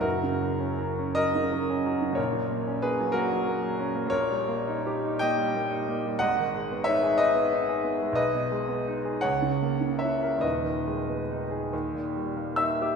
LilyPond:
<<
  \new Staff \with { instrumentName = "Grand piano" } { \time 6/8 \key fis \mixolydian \tempo 4. = 58 <fis' ais'>4. <ais' dis''>4. | <ais' cis''>4 <gis' b'>8 <fis' ais'>4. | \key gis \minor <ais' cis''>4. <dis'' g''>4. | <dis'' fis''>4 <cis'' e''>8 <b' dis''>4. |
<b' dis''>4. <cis'' fis''>4 <cis'' e''>8 | <b' dis''>2~ <b' dis''>8 <e'' e'''>8 | }
  \new Staff \with { instrumentName = "Grand piano" } { \clef bass \time 6/8 \key fis \mixolydian <fis,, fis,>16 cis16 fis16 cis'16 fis16 cis'16 fis16 cis16 fis16 cis'16 fis16 cis16 | <ais,, ais,>16 fis16 ais16 cis'16 ais16 fis16 ais16 fis16 ais16 fis16 cis'16 ais16 | \key gis \minor <ais,, ais,>16 g16 ais16 dis'16 g'16 dis'16 ais16 g16 ais16 dis'16 ais16 g16 | <gis,, gis,>16 dis16 gis16 b16 dis'16 gis'16 dis'16 b16 dis'16 gis'16 b16 gis16 |
b,,16 b,16 gis16 b16 dis'16 gis'16 cis,16 cis16 ais16 cis16 e'16 ais'16 | <dis,, dis,>16 dis16 gis16 b16 dis'16 gis'16 dis,16 ais,16 g16 ais16 dis'16 g'16 | }
>>